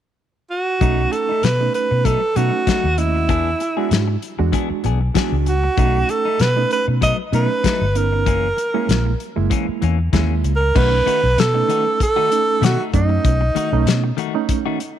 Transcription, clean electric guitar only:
0.81 1.01 F#3 medium
0.81 1.01 A3 medium
0.81 1.02 D#4 medium
1.13 muted clean electric guitar stroke soft
1.29 1.43 A3 soft
1.29 1.43 D#4 soft
1.44 muted clean electric guitar stroke soft
1.60 muted clean electric guitar stroke soft
1.91 muted clean electric guitar stroke soft
2.05 2.22 F#3 medium
2.05 2.22 A3 medium
2.05 2.21 D#4 medium
2.22 muted clean electric guitar stroke soft
2.36 2.53 F#3 soft
2.36 2.53 A3 medium
2.36 2.52 D#4 medium
2.53 muted clean electric guitar stroke soft
2.67 2.87 F#3 medium
2.67 2.87 A3 medium
2.67 2.88 D#4 medium
2.98 muted clean electric guitar stroke soft
3.15 muted clean electric guitar stroke soft
3.29 3.49 E3 medium
3.29 3.49 B3 medium
3.29 3.49 D4 medium
3.29 3.50 G#4 medium
3.60 muted clean electric guitar stroke soft
3.77 3.90 B3 soft
3.77 3.90 D4 soft
3.77 3.91 G#4 medium
3.91 muted clean electric guitar stroke soft
4.08 muted clean electric guitar stroke soft
4.39 muted clean electric guitar stroke soft
4.52 4.70 E3 medium
4.52 4.70 B3 medium
4.52 4.70 D4 medium
4.52 4.69 G#4 medium
4.70 muted clean electric guitar stroke soft
4.84 5.01 E3 medium
4.84 5.01 B3 medium
4.84 5.00 D4 medium
4.84 5.00 G#4 medium
5.01 muted clean electric guitar stroke soft
5.15 5.35 E3 medium
5.15 5.35 B3 medium
5.15 5.36 D4 medium
5.15 5.36 G#4 medium
5.46 muted clean electric guitar stroke soft
5.64 muted clean electric guitar stroke soft
5.77 5.97 F#3 medium
5.77 5.98 A3 medium
5.77 5.98 D#4 medium
6.08 muted clean electric guitar stroke soft
6.25 6.39 A3 soft
6.25 6.39 D#4 soft
6.40 muted clean electric guitar stroke soft
6.57 muted clean electric guitar stroke soft
6.88 muted clean electric guitar stroke soft
7.01 7.19 F#3 medium
7.01 7.18 A3 medium
7.01 7.17 D#4 medium
7.18 muted clean electric guitar stroke soft
7.32 7.50 F#3 medium
7.32 7.50 A3 medium
7.32 7.49 D#4 medium
7.50 muted clean electric guitar stroke soft
7.64 7.84 F#3 medium
7.64 7.85 A3 medium
7.64 7.85 D#4 medium
7.95 muted clean electric guitar stroke soft
8.13 muted clean electric guitar stroke soft
8.26 8.46 E3 medium
8.26 8.47 A#3 medium
8.26 8.47 C#4 medium
8.57 muted clean electric guitar stroke soft
8.74 8.88 A#3 soft
8.74 8.89 C#4 soft
8.89 muted clean electric guitar stroke soft
9.05 muted clean electric guitar stroke soft
9.36 muted clean electric guitar stroke soft
9.50 9.68 E3 medium
9.50 9.67 A#3 medium
9.50 9.66 C#4 medium
9.68 muted clean electric guitar stroke soft
9.82 9.99 E3 medium
9.82 9.99 A#3 medium
9.82 9.98 C#4 medium
9.99 muted clean electric guitar stroke soft
10.13 10.33 E3 medium
10.13 10.33 A#3 medium
10.13 10.34 C#4 medium
10.44 muted clean electric guitar stroke soft
10.61 muted clean electric guitar stroke soft
10.75 10.92 D#3 medium
10.75 10.91 A3 medium
10.75 10.91 D#4 medium
10.75 10.90 F#4 medium
10.91 muted clean electric guitar stroke soft
11.06 11.23 D#3 medium
11.06 11.22 A3 medium
11.06 11.22 D#4 medium
11.06 11.21 F#4 medium
11.23 muted clean electric guitar stroke soft
11.37 muted clean electric guitar stroke soft
11.54 muted clean electric guitar stroke soft
11.68 11.86 D#3 medium
11.68 11.85 A3 medium
11.68 11.85 D#4 medium
11.68 11.84 F#4 medium
11.85 muted clean electric guitar stroke soft
12.16 12.29 D#3 medium
12.16 12.30 A3 medium
12.16 12.30 D#4 medium
12.16 12.30 F#4 medium
12.31 muted clean electric guitar stroke soft
12.61 12.79 D#3 medium
12.61 12.79 A3 medium
12.61 12.78 D#4 medium
12.61 12.77 F#4 medium
12.78 12.92 A3 soft
12.78 12.92 D#4 soft
12.78 12.92 F#4 soft
12.92 muted clean electric guitar stroke soft
13.09 muted clean electric guitar stroke soft
13.41 muted clean electric guitar stroke soft
13.55 13.72 D#3 medium
13.55 13.72 A3 medium
13.55 13.71 D#4 medium
13.55 13.70 F#4 medium
13.72 muted clean electric guitar stroke soft
13.86 muted clean electric guitar stroke soft
14.04 muted clean electric guitar stroke soft
14.17 14.34 D#3 medium
14.17 14.34 A3 medium
14.17 14.34 D#4 medium
14.17 14.34 F#4 medium
14.35 muted clean electric guitar stroke medium
14.66 14.78 D#3 medium
14.66 14.79 A3 medium
14.66 14.79 D#4 medium
14.66 14.80 F#4 medium
14.80 muted clean electric guitar stroke soft

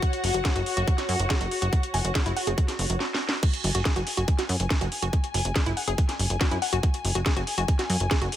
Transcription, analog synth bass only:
0.24 0.31 F#1 loud
0.34 0.41 F#1 medium
0.56 0.62 F#1 medium
0.77 0.84 F#1 medium
1.09 1.16 F#2 loud
1.19 1.26 F#1 medium
1.41 1.48 F#1 medium
1.62 1.69 F#1 medium
1.94 2.01 F#1 medium
2.05 2.11 F#1 medium
2.26 2.33 F#1 medium
2.47 2.54 F#1 medium
2.79 2.86 F#1 loud
2.90 2.97 F#1 medium
3.64 3.71 F#1 medium
3.75 3.82 F#1 medium
3.96 4.03 F#1 medium
4.17 4.24 F#1 medium
4.49 4.56 F#2 loud
4.60 4.67 F#1 medium
4.81 4.88 F#1 medium
5.02 5.09 F#1 medium
5.34 5.41 F#1 loud
5.45 5.52 F#1 medium
5.66 5.73 F#1 medium
5.88 5.94 F#1 medium
6.19 6.26 F#1 medium
6.30 6.37 F#1 medium
6.51 6.58 F#2 medium
6.73 6.80 F#1 medium
7.05 7.11 F#1 medium
7.15 7.22 F#1 medium
7.36 7.43 F#1 medium
7.58 7.65 F#1 medium
7.90 7.97 F#2 loud
8.00 8.07 F#1 medium
8.22 8.28 F#1 medium

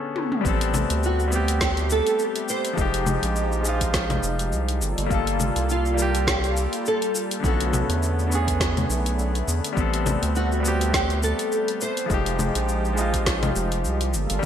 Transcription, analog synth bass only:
0.45 0.85 A1 loud
0.90 2.02 D2 medium
2.78 3.18 F1 medium
3.23 4.19 A#1 medium
4.23 4.54 F1 medium
4.52 4.83 C2 medium
4.81 4.95 G1 medium
4.98 5.08 G1 medium
5.11 5.51 G1 medium
5.56 6.67 C2 medium
7.44 7.84 B1 medium
7.89 8.85 E2 medium
8.90 9.18 B1 medium
9.19 9.43 B1 medium
9.48 9.61 E2 loud
9.77 10.17 A1 loud
10.23 11.34 D2 medium
12.10 12.50 F1 medium
12.55 13.51 A#1 medium
13.56 13.86 F1 medium
13.85 14.16 C2 medium
14.14 14.27 G1 medium
14.30 14.40 G1 medium

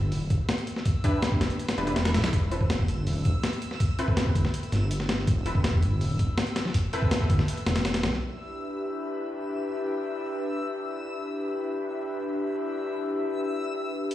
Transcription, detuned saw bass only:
0.00 0.14 G1 medium
0.12 0.29 D1 medium
0.30 0.39 E1 medium
1.41 1.49 G1 medium
1.78 1.94 E1 loud
1.96 2.16 E1 medium
2.15 2.31 B1 loud
2.33 2.87 E1 loud
2.88 3.08 G1 medium
3.07 3.23 D1 medium
3.25 3.33 E1 medium
4.35 4.44 G1 medium
4.72 5.26 G1 medium
5.27 5.81 E1 loud
5.83 6.03 G1 medium
6.01 6.18 D1 medium
6.19 6.28 E1 medium
7.30 7.38 G1 medium
7.67 7.83 E1 medium
7.85 8.05 E1 loud
8.03 8.20 B1 loud

